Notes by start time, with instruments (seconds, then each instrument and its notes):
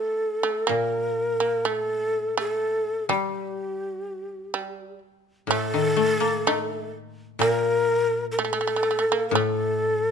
Already playing: shamisen A3, shakuhachi A4
0.43 shamisen A3
0.67 koto A#2, shamisen A#3, shakuhachi A#4
1.40 shamisen A#3
1.65 shamisen A3, shakuhachi A4
2.37 shamisen A3, shakuhachi A4
3.09 koto G3, shamisen G3, shakuhachi G4
4.54 shamisen G3
5.47 koto A2, shamisen A3, shakuhachi A4
5.74 koto D#3
5.96 koto A3
6.20 koto A#3
6.47 shamisen A3, koto D#4
7.39 koto A#2, shamisen A#3, shakuhachi A#4
7.94 shamisen A3
8.32 shakuhachi A#4
8.39 shamisen A3, shakuhachi A4
8.45 shamisen A3
8.53 shamisen A3
8.61 shamisen A3
8.67 shamisen A3
8.76 shamisen A3
8.83 shamisen A3
8.91 shamisen A3
8.99 shamisen A3
9.12 shamisen A#3
9.29 koto A2, shakuhachi A#4
9.35 shamisen A3, shakuhachi A4
9.95 shamisen G3